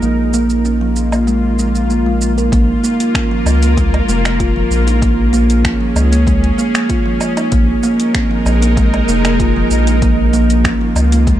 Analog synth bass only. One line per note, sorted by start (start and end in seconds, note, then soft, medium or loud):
0.02 2.49 A#1 medium
2.52 2.74 A#1 medium
3.46 4.01 C#2 loud
4.09 4.63 F1 medium
4.71 5.72 A#1 medium
5.96 6.51 C#2 loud
7.52 7.74 A#1 loud
8.46 9.01 A#1 loud
9.08 9.63 F1 medium
9.71 10.72 A#1 medium
10.96 11.40 C#2 loud